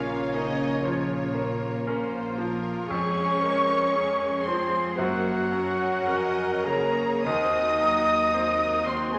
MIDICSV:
0, 0, Header, 1, 10, 480
1, 0, Start_track
1, 0, Key_signature, -5, "minor"
1, 0, Tempo, 1020408
1, 1350, Time_signature, 4, 2, 24, 8
1, 1351, Tempo, 1047120
1, 2311, Tempo, 1081081
1, 2791, Tempo, 1200000
1, 3271, Tempo, 1077199
1, 4136, End_track
2, 0, Start_track
2, 0, Title_t, "Flute"
2, 0, Program_c, 0, 73
2, 0, Note_on_c, 0, 73, 67
2, 873, Note_off_c, 0, 73, 0
2, 1356, Note_on_c, 0, 85, 88
2, 2056, Note_off_c, 0, 85, 0
2, 2079, Note_on_c, 0, 84, 67
2, 2310, Note_off_c, 0, 84, 0
2, 2318, Note_on_c, 0, 78, 80
2, 3031, Note_on_c, 0, 82, 70
2, 3037, Note_off_c, 0, 78, 0
2, 3272, Note_off_c, 0, 82, 0
2, 3275, Note_on_c, 0, 87, 90
2, 3995, Note_on_c, 0, 84, 68
2, 4001, Note_off_c, 0, 87, 0
2, 4106, Note_on_c, 0, 80, 59
2, 4113, Note_off_c, 0, 84, 0
2, 4136, Note_off_c, 0, 80, 0
2, 4136, End_track
3, 0, Start_track
3, 0, Title_t, "Oboe"
3, 0, Program_c, 1, 68
3, 0, Note_on_c, 1, 73, 64
3, 866, Note_off_c, 1, 73, 0
3, 1356, Note_on_c, 1, 85, 77
3, 2071, Note_on_c, 1, 84, 70
3, 2078, Note_off_c, 1, 85, 0
3, 2310, Note_on_c, 1, 78, 77
3, 2317, Note_off_c, 1, 84, 0
3, 3029, Note_off_c, 1, 78, 0
3, 3035, Note_on_c, 1, 82, 84
3, 3274, Note_on_c, 1, 87, 79
3, 3281, Note_off_c, 1, 82, 0
3, 3989, Note_on_c, 1, 84, 62
3, 3996, Note_off_c, 1, 87, 0
3, 4109, Note_off_c, 1, 84, 0
3, 4115, Note_on_c, 1, 80, 62
3, 4136, Note_off_c, 1, 80, 0
3, 4136, End_track
4, 0, Start_track
4, 0, Title_t, "Violin section"
4, 0, Program_c, 2, 48
4, 0, Note_on_c, 2, 73, 68
4, 849, Note_off_c, 2, 73, 0
4, 1343, Note_on_c, 2, 85, 92
4, 2049, Note_off_c, 2, 85, 0
4, 2065, Note_on_c, 2, 84, 68
4, 2305, Note_on_c, 2, 78, 74
4, 2308, Note_off_c, 2, 84, 0
4, 3013, Note_off_c, 2, 78, 0
4, 3026, Note_on_c, 2, 82, 75
4, 3266, Note_on_c, 2, 87, 95
4, 3270, Note_off_c, 2, 82, 0
4, 3977, Note_off_c, 2, 87, 0
4, 3989, Note_on_c, 2, 84, 68
4, 4109, Note_off_c, 2, 84, 0
4, 4114, Note_on_c, 2, 80, 68
4, 4136, Note_off_c, 2, 80, 0
4, 4136, End_track
5, 0, Start_track
5, 0, Title_t, "Violin section"
5, 0, Program_c, 3, 48
5, 0, Note_on_c, 3, 77, 55
5, 154, Note_off_c, 3, 77, 0
5, 156, Note_on_c, 3, 75, 64
5, 390, Note_off_c, 3, 75, 0
5, 395, Note_on_c, 3, 73, 53
5, 871, Note_off_c, 3, 73, 0
5, 874, Note_on_c, 3, 72, 53
5, 1111, Note_off_c, 3, 72, 0
5, 1114, Note_on_c, 3, 70, 56
5, 1353, Note_off_c, 3, 70, 0
5, 1355, Note_on_c, 3, 68, 61
5, 1593, Note_off_c, 3, 68, 0
5, 1593, Note_on_c, 3, 72, 58
5, 1831, Note_on_c, 3, 70, 47
5, 1833, Note_off_c, 3, 72, 0
5, 2070, Note_on_c, 3, 68, 51
5, 2071, Note_off_c, 3, 70, 0
5, 2311, Note_off_c, 3, 68, 0
5, 2311, Note_on_c, 3, 70, 58
5, 2781, Note_off_c, 3, 70, 0
5, 2791, Note_on_c, 3, 75, 64
5, 3030, Note_off_c, 3, 75, 0
5, 3033, Note_on_c, 3, 73, 57
5, 3271, Note_on_c, 3, 72, 68
5, 3273, Note_off_c, 3, 73, 0
5, 3516, Note_off_c, 3, 72, 0
5, 3519, Note_on_c, 3, 70, 65
5, 4136, Note_off_c, 3, 70, 0
5, 4136, End_track
6, 0, Start_track
6, 0, Title_t, "French horn section"
6, 0, Program_c, 4, 60
6, 0, Note_on_c, 4, 61, 80
6, 871, Note_off_c, 4, 61, 0
6, 1352, Note_on_c, 4, 73, 89
6, 2054, Note_off_c, 4, 73, 0
6, 2074, Note_on_c, 4, 72, 79
6, 2312, Note_off_c, 4, 72, 0
6, 2317, Note_on_c, 4, 66, 95
6, 3032, Note_off_c, 4, 66, 0
6, 3033, Note_on_c, 4, 70, 88
6, 3268, Note_off_c, 4, 70, 0
6, 3271, Note_on_c, 4, 75, 91
6, 3994, Note_off_c, 4, 75, 0
6, 3998, Note_on_c, 4, 72, 82
6, 4109, Note_on_c, 4, 68, 80
6, 4113, Note_off_c, 4, 72, 0
6, 4136, Note_off_c, 4, 68, 0
6, 4136, End_track
7, 0, Start_track
7, 0, Title_t, "Viola section"
7, 0, Program_c, 5, 48
7, 0, Note_on_c, 5, 58, 62
7, 0, Note_on_c, 5, 65, 60
7, 152, Note_off_c, 5, 65, 0
7, 155, Note_on_c, 5, 63, 58
7, 376, Note_off_c, 5, 58, 0
7, 390, Note_off_c, 5, 63, 0
7, 391, Note_on_c, 5, 58, 53
7, 392, Note_on_c, 5, 65, 54
7, 870, Note_off_c, 5, 65, 0
7, 877, Note_on_c, 5, 65, 56
7, 1333, Note_off_c, 5, 58, 0
7, 1345, Note_off_c, 5, 65, 0
7, 1360, Note_on_c, 5, 56, 54
7, 1360, Note_on_c, 5, 68, 60
7, 1596, Note_off_c, 5, 68, 0
7, 1602, Note_on_c, 5, 70, 60
7, 1827, Note_off_c, 5, 56, 0
7, 1835, Note_on_c, 5, 68, 57
7, 1837, Note_off_c, 5, 70, 0
7, 1837, Note_on_c, 5, 56, 59
7, 2304, Note_off_c, 5, 56, 0
7, 2313, Note_off_c, 5, 68, 0
7, 2319, Note_on_c, 5, 58, 63
7, 2319, Note_on_c, 5, 66, 55
7, 2545, Note_off_c, 5, 58, 0
7, 2555, Note_on_c, 5, 61, 57
7, 2794, Note_off_c, 5, 66, 0
7, 2799, Note_on_c, 5, 70, 59
7, 3029, Note_off_c, 5, 70, 0
7, 3037, Note_on_c, 5, 68, 69
7, 3276, Note_off_c, 5, 61, 0
7, 3276, Note_off_c, 5, 68, 0
7, 3280, Note_on_c, 5, 60, 62
7, 3281, Note_on_c, 5, 66, 62
7, 3520, Note_off_c, 5, 60, 0
7, 3534, Note_on_c, 5, 58, 55
7, 3764, Note_off_c, 5, 66, 0
7, 3772, Note_on_c, 5, 66, 60
7, 4136, Note_off_c, 5, 58, 0
7, 4136, Note_off_c, 5, 66, 0
7, 4136, End_track
8, 0, Start_track
8, 0, Title_t, "Cello section"
8, 0, Program_c, 6, 48
8, 0, Note_on_c, 6, 49, 63
8, 868, Note_off_c, 6, 49, 0
8, 1351, Note_on_c, 6, 61, 78
8, 2054, Note_off_c, 6, 61, 0
8, 2069, Note_on_c, 6, 60, 70
8, 2310, Note_off_c, 6, 60, 0
8, 2312, Note_on_c, 6, 54, 70
8, 3030, Note_off_c, 6, 54, 0
8, 3031, Note_on_c, 6, 58, 66
8, 3267, Note_off_c, 6, 58, 0
8, 3274, Note_on_c, 6, 63, 78
8, 3994, Note_on_c, 6, 60, 73
8, 3995, Note_off_c, 6, 63, 0
8, 4112, Note_off_c, 6, 60, 0
8, 4113, Note_on_c, 6, 56, 62
8, 4136, Note_off_c, 6, 56, 0
8, 4136, End_track
9, 0, Start_track
9, 0, Title_t, "Grand piano"
9, 0, Program_c, 7, 0
9, 0, Control_c, 7, 64, 127
9, 0, Note_on_c, 7, 46, 69
9, 0, Note_on_c, 7, 53, 52
9, 0, Note_on_c, 7, 61, 46
9, 0, Note_on_c, 7, 70, 49
9, 55, Note_off_c, 7, 53, 0
9, 133, Note_off_c, 7, 61, 0
9, 134, Note_off_c, 7, 70, 0
9, 161, Note_on_c, 7, 58, 43
9, 367, Note_off_c, 7, 46, 0
9, 396, Note_on_c, 7, 53, 50
9, 536, Note_off_c, 7, 58, 0
9, 633, Note_on_c, 7, 58, 48
9, 776, Note_off_c, 7, 53, 0
9, 879, Note_on_c, 7, 61, 44
9, 880, Note_on_c, 7, 70, 51
9, 1015, Note_off_c, 7, 58, 0
9, 1094, Note_off_c, 7, 61, 0
9, 1095, Note_off_c, 7, 70, 0
9, 1120, Note_on_c, 7, 53, 48
9, 1356, Note_off_c, 7, 53, 0
9, 1357, Control_c, 7, 64, 0
9, 1365, Note_on_c, 7, 41, 64
9, 1432, Control_c, 7, 64, 127
9, 1606, Note_on_c, 7, 56, 51
9, 1845, Note_on_c, 7, 61, 43
9, 1847, Note_on_c, 7, 68, 46
9, 1983, Note_off_c, 7, 56, 0
9, 2059, Note_off_c, 7, 61, 0
9, 2060, Note_off_c, 7, 68, 0
9, 2087, Note_on_c, 7, 53, 51
9, 2300, Note_off_c, 7, 41, 0
9, 2318, Control_c, 7, 64, 0
9, 2318, Note_on_c, 7, 42, 65
9, 2319, Note_off_c, 7, 53, 0
9, 2381, Control_c, 7, 64, 127
9, 2555, Note_on_c, 7, 54, 49
9, 2780, Note_off_c, 7, 42, 0
9, 2798, Note_on_c, 7, 70, 51
9, 2799, Note_on_c, 7, 61, 44
9, 2935, Note_off_c, 7, 54, 0
9, 3017, Note_off_c, 7, 70, 0
9, 3018, Note_off_c, 7, 61, 0
9, 3033, Note_on_c, 7, 49, 49
9, 3273, Note_off_c, 7, 49, 0
9, 3277, Note_on_c, 7, 39, 71
9, 3281, Control_c, 7, 64, 0
9, 3341, Control_c, 7, 64, 127
9, 3520, Note_on_c, 7, 54, 53
9, 3757, Note_on_c, 7, 72, 50
9, 3758, Note_on_c, 7, 60, 51
9, 3900, Note_off_c, 7, 54, 0
9, 3975, Note_off_c, 7, 72, 0
9, 3976, Note_off_c, 7, 60, 0
9, 3987, Note_on_c, 7, 51, 48
9, 4136, Note_off_c, 7, 39, 0
9, 4136, Note_off_c, 7, 51, 0
9, 4136, End_track
10, 0, Start_track
10, 0, Title_t, "Double bass section"
10, 0, Program_c, 8, 48
10, 0, Note_on_c, 8, 34, 66
10, 1351, Note_off_c, 8, 34, 0
10, 1351, Note_on_c, 8, 41, 61
10, 2310, Note_on_c, 8, 42, 64
10, 2312, Note_off_c, 8, 41, 0
10, 2788, Note_on_c, 8, 41, 52
10, 2790, Note_off_c, 8, 42, 0
10, 3261, Note_off_c, 8, 41, 0
10, 3270, Note_on_c, 8, 39, 56
10, 4136, Note_off_c, 8, 39, 0
10, 4136, End_track
0, 0, End_of_file